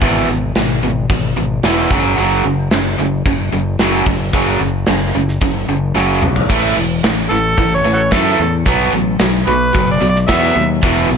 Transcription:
0.01 fingered electric bass G#1, overdriven electric guitar E2 B2 E3, kick, closed hi-hat
0.28 fingered electric bass G#1, overdriven electric guitar E2 B2, closed hi-hat
0.55 fingered electric bass G#1, overdriven electric guitar E2 B2, snare, closed hi-hat
0.82 fingered electric bass G#1, overdriven electric guitar E2 B2, closed hi-hat
1.10 fingered electric bass G#1, overdriven electric guitar E2 B2, kick, closed hi-hat
1.37 fingered electric bass G#1, overdriven electric guitar E2 B2, closed hi-hat
1.63 fingered electric bass E1, overdriven electric guitar E2 B2 E3, snare, closed hi-hat
1.90 fingered electric bass F#1, overdriven electric guitar F#2 C#3 F#3, kick, closed hi-hat
2.17 fingered electric bass F#1, overdriven electric guitar F#2 C#3 F#3, closed hi-hat
2.44 fingered electric bass F#1, overdriven electric guitar F#2 C#3, closed hi-hat
2.71 fingered electric bass F#1, overdriven electric guitar F#2 C#3, snare, closed hi-hat
2.98 fingered electric bass F#1, overdriven electric guitar F#2 C#3, closed hi-hat
3.26 fingered electric bass F#1, overdriven electric guitar F#2 C#3, kick, closed hi-hat
3.52 fingered electric bass F#1, overdriven electric guitar F#2 C#3, closed hi-hat
3.79 fingered electric bass F#1, overdriven electric guitar F#2 C#3 F#3, snare, closed hi-hat
4.06 fingered electric bass F#1, overdriven electric guitar F#2 C#3, kick, closed hi-hat
4.33 fingered electric bass F#1, overdriven electric guitar F#2 C#3 F#3, kick, closed hi-hat
4.60 fingered electric bass F#1, overdriven electric guitar F#2 C#3, closed hi-hat
4.86 fingered electric bass F#1, overdriven electric guitar F#2 C#3, snare, closed hi-hat
5.14 fingered electric bass F#1, overdriven electric guitar F#2 C#3, closed hi-hat
5.28 snare
5.41 fingered electric bass F#1, overdriven electric guitar F#2 C#3, kick, closed hi-hat
5.68 fingered electric bass F#1, overdriven electric guitar F#2 C#3, closed hi-hat
5.95 fingered electric bass F#1, overdriven electric guitar F#2 C#3 F#3, snare
6.22 fingered electric bass B1, overdriven electric guitar F#2 C#3, mid tom
6.36 floor tom
6.50 fingered electric bass A1, overdriven electric guitar A2 E3 A3, kick, crash
6.77 fingered electric bass E1, overdriven electric guitar A2 E3, closed hi-hat
7.04 fingered electric bass A1, overdriven electric guitar A2 E3, snare, closed hi-hat
7.29 fingered electric bass A1, overdriven electric guitar A2 E3, harmonica A4, closed hi-hat
7.57 fingered electric bass A1, overdriven electric guitar A2 E3, kick, closed hi-hat
7.74 harmonica C#5
7.85 fingered electric bass A1, overdriven electric guitar A2 E3, closed hi-hat
7.93 harmonica F#4 A4 C#5
8.11 fingered electric bass F#2, overdriven electric guitar A2 E3 A3, harmonica A4, kick, snare, closed hi-hat
8.39 fingered electric bass E2, overdriven electric guitar A2 E3, closed hi-hat
8.66 fingered electric bass B1, overdriven electric guitar B2 F#3 B3, kick, closed hi-hat
8.93 fingered electric bass A1, overdriven electric guitar B2 F#3, closed hi-hat
9.19 fingered electric bass B1, overdriven electric guitar B2 F#3, snare, closed hi-hat
9.47 fingered electric bass B1, overdriven electric guitar B2 F#3, harmonica B4, closed hi-hat
9.74 fingered electric bass F#1, overdriven electric guitar B2 F#3, kick, closed hi-hat
9.91 harmonica D5
10.01 fingered electric bass B1, overdriven electric guitar B2 F#3, closed hi-hat
10.09 harmonica D5
10.15 snare
10.28 fingered electric bass E2, overdriven electric guitar B2 F#3 B3, harmonica E5, kick, snare, closed hi-hat
10.55 fingered electric bass D#2, overdriven electric guitar B2 F#3, closed hi-hat
10.82 fingered electric bass E1, overdriven electric guitar E2 B2 E3, kick, closed hi-hat
10.96 snare
11.09 fingered electric bass B1, overdriven electric guitar E2 B2, closed hi-hat

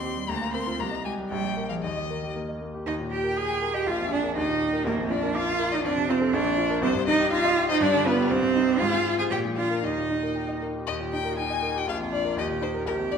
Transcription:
Already playing: grand piano D#2 D#5, cello C4, violin C6
0.04 grand piano G4
0.17 grand piano G3
0.29 grand piano D2, cello A#3, violin A#5
0.41 grand piano F5
0.54 cello C4, grand piano A#4, violin C6
0.67 grand piano F4
0.80 grand piano C2, cello A#3, violin A#5
0.92 grand piano D#5
1.04 cello G#3, grand piano G4, violin G#5
1.18 grand piano G3
1.29 grand piano A#1, cello G3, violin G5
1.43 grand piano D5
1.57 grand piano A#4
1.69 cello F3, grand piano G#4, violin F5
1.82 grand piano D#2, cello D#3, violin D#5
1.97 grand piano D#5
2.10 grand piano A#4
2.23 grand piano G4
2.36 grand piano A#3
2.49 grand piano D#5
2.61 grand piano A#3
2.75 grand piano G4
2.86 grand piano D#2, cello D#4, violin D#5
3.00 grand piano A#2
3.11 cello G4, grand piano G4, violin G5
3.24 grand piano A#4
3.36 cello G#4, violin G#5, grand piano D#6
3.49 grand piano G5
3.62 grand piano A#4
3.74 cello G4, grand piano D#5, violin G5
3.86 grand piano A#1, cello F4, violin F5
3.99 grand piano F2
4.11 cello D4, grand piano G#4, violin D5
4.23 grand piano A#4
4.36 grand piano D#2, cello D#4, violin D#5
4.48 grand piano A#2
4.62 grand piano G4
4.73 grand piano A#4
4.86 grand piano A#1, cello A#3, violin A#4
4.98 grand piano F2
5.10 cello D4, grand piano F4, violin D5
5.23 grand piano A#4
5.35 cello F4, violin F5, grand piano D6
5.47 grand piano F5
5.59 grand piano A#4
5.72 cello D#4, grand piano D5, violin D#5
5.84 grand piano F2, cello D4, violin D5
5.97 grand piano C3
6.09 cello C4, grand piano F4, violin C5
6.21 grand piano A4
6.33 grand piano A#1, cello D4, violin D5
6.45 grand piano F2
6.58 grand piano F4
6.70 grand piano A#4
6.82 grand piano C2, cello C4, violin C5
6.95 grand piano G2
7.07 grand piano D#4, cello D#4, violin D#5
7.20 grand piano G4
7.31 cello F4, violin F5, grand piano C6
7.45 grand piano D#5
7.57 grand piano G4
7.69 cello D#4, grand piano C5, violin D#5
7.81 grand piano G2, cello D4, violin D5
7.94 grand piano D3
8.06 cello B3, grand piano F4, violin B4
8.19 grand piano G4
8.31 grand piano C2, cello C4, violin C5
8.43 grand piano G2
8.56 grand piano D#4
8.68 grand piano G4
8.79 grand piano G#2, cello F4, violin F5
8.94 grand piano G#3
9.06 grand piano F4
9.18 cello G#4, grand piano C5, violin G#5
9.30 grand piano A#2, cello G4, violin G5
9.45 grand piano F3
9.57 grand piano D4, cello F4, violin F5
9.70 grand piano A#4
9.83 grand piano D#2, cello D#4, violin D#5
9.97 grand piano A#2
10.10 grand piano D#4
10.23 grand piano A#4
10.36 grand piano G5
10.49 grand piano D#5
10.62 grand piano A#4
10.75 grand piano G4
10.87 grand piano D#2, cello G4, violin D#5
11.00 grand piano A#2
11.12 grand piano D#4, violin G5
11.25 grand piano A#4
11.38 cello D#4, grand piano G5, violin G#5
11.50 grand piano D#5
11.63 grand piano A#4
11.75 grand piano G4, violin G5
11.87 grand piano A#1, cello F4, violin F5
11.99 grand piano F2
12.12 grand piano D4, violin D5
12.25 grand piano A#4
12.36 grand piano D#2, cello G4, violin D#5
12.49 grand piano A#2
12.61 grand piano D#4, violin C5
12.74 grand piano A#4
12.85 grand piano A#1, cello G4, violin A#4
12.98 grand piano F2
13.11 grand piano D4, violin D5

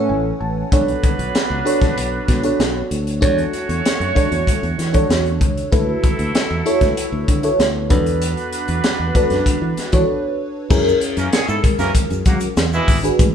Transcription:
Already playing: fingered electric bass A2, horn section E3 A3 C#4 A4, fm electric piano C#4 E4 A4 C#5 F#5 G#5
0.09 fingered electric bass A1, fm electric piano G#5
0.40 fingered electric bass A1, fm electric piano A5
0.72 fingered electric bass B1, horn section F#3 B3 D4 B4, fm electric piano D4 F#4 A4 C#5, kick, closed hi-hat
0.88 closed hi-hat
1.03 kick, closed hi-hat
1.19 fingered electric bass B1, closed hi-hat
1.35 snare, closed hi-hat
1.50 fingered electric bass C#2
1.65 fm electric piano D4 F#4 A4 C#5, closed hi-hat
1.81 fingered electric bass B1, kick, snare, closed hi-hat
1.97 fingered electric bass B1, closed hi-hat
2.28 fingered electric bass B2, kick, snare, closed hi-hat
2.43 fm electric piano D4 F#4 A4 C#5, closed hi-hat
2.59 fingered electric bass B1, snare, closed hi-hat
2.91 fingered electric bass D2, closed hi-hat
3.07 closed hi-hat
3.21 fingered electric bass E2, horn section A3 C#4 F#4 C#5, fm electric piano D4 F#4 A4 C#5, kick, closed hi-hat
3.38 closed hi-hat
3.53 closed hi-hat
3.69 fingered electric bass E2, closed hi-hat
3.85 snare, closed hi-hat
4.00 fingered electric bass F#2, closed hi-hat
4.15 fm electric piano D4 F#4 A4 C#5, kick, closed hi-hat
4.32 fingered electric bass E2, closed hi-hat
4.47 kick, closed hi-hat
4.63 fingered electric bass E2, closed hi-hat
4.79 fingered electric bass E3, snare, closed hi-hat
4.93 fm electric piano D4 F#4 A4 C#5, kick, closed hi-hat
5.09 fingered electric bass E2, snare, closed hi-hat
5.26 closed hi-hat
5.41 fingered electric bass C#2, kick, closed hi-hat
5.57 closed hi-hat
5.72 fingered electric bass D2, horn section F#3 A3 E4 A4, fm electric piano E4 F#4 A4 B4, kick, closed hi-hat
6.04 kick, closed hi-hat
6.19 fingered electric bass D2, closed hi-hat
6.35 snare, closed hi-hat
6.51 fingered electric bass E2
6.66 fm electric piano E4 F#4 A4 C#5, closed hi-hat
6.81 fingered electric bass D2, kick, snare, closed hi-hat
6.97 closed hi-hat
7.12 fingered electric bass D2
7.28 fingered electric bass D3, kick, closed hi-hat
7.43 fm electric piano E4 F#4 A4 C#5, closed hi-hat
7.59 fingered electric bass D2, snare, closed hi-hat
7.90 fingered electric bass E2, horn section F#3 B3 D4 B4, fm electric piano D4 F#4 A4 B4, kick, closed hi-hat
8.06 closed hi-hat
8.22 closed hi-hat
8.37 closed hi-hat
8.53 closed hi-hat
8.68 fingered electric bass E2, closed hi-hat
8.84 snare, closed hi-hat
9.00 fingered electric bass E2
9.15 fm electric piano D4 F#4 A4 B4, kick, closed hi-hat
9.30 fingered electric bass F#2, snare, closed hi-hat
9.46 kick, closed hi-hat
9.62 fingered electric bass E3
9.77 snare, closed hi-hat
9.92 fingered electric bass E3, fm electric piano D4 F#4 A4 C#5, kick, closed hi-hat
10.70 fingered electric bass F#2, fm electric piano C#4 E4 G#4 A#4, kick, crash, shaker
10.89 shaker
11.01 closed hi-hat
11.17 fingered electric bass F#2, horn section E3 A#3 C#4 A#4, closed hi-hat, shaker
11.32 horn section A#3 C#4 G#4 C#5, snare, closed hi-hat, shaker
11.48 fingered electric bass G#2, horn section A3 E4 A4, shaker
11.64 kick, closed hi-hat
11.79 fingered electric bass F#2, horn section E3 A#3 C#4 A#4, snare, closed hi-hat, shaker
11.95 kick, closed hi-hat, shaker
12.10 fingered electric bass F#2, closed hi-hat, shaker
12.26 horn section C#3 F#3 A#3 F#4, fingered electric bass F#3, kick, closed hi-hat, shaker
12.40 closed hi-hat, shaker
12.57 fingered electric bass E2, snare, closed hi-hat, shaker
12.73 horn section B2 E3 G#3 E4, shaker
12.88 fingered electric bass G#1, kick, open hi-hat, shaker
13.03 fm electric piano D4 F#4 G#4 B4, closed hi-hat, shaker
13.19 fingered electric bass A1, kick, closed hi-hat, shaker

